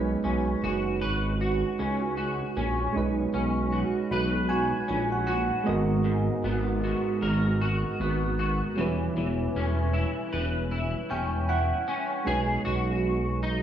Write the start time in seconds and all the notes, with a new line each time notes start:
Already playing: B1 G#3 C#4 D#4 B4
0.24 B1 C#4
0.63 F#1 F#4
1.01 G#1 B4
1.41 F#4
1.79 C#2 C#4
2.17 F#4
2.57 A#1 C#4
2.92 B1 G#3 C#4 D#4
2.97 B4
3.34 B1 C#4
3.72 F#4
4.11 B1 B4 B5
4.49 F#4 G#5
4.88 A#1 C#4 G#5
5.12 F#5
5.27 F#4 F#5
5.64 G#2 G#3 B3 F#4 D#5
5.68 G#1 A#4
6.04 G#2
6.44 G#1 B3
6.84 F#4
7.22 G#1 A#4
7.61 F#4
8.00 G#1 B3
8.39 F#4
8.75 E1 E3 G3 C#4 E4
8.81 B4
9.17 E1 E3
9.56 E1 C#4
9.93 E4
10.33 E1 B4
10.71 E4
11.10 E1 C#4 G5
11.49 E4 F#5
11.88 C#4
12.24 B1 G#3 C#4 D#4 G#4
12.29 B4
12.65 B1 F#4
13.43 D#4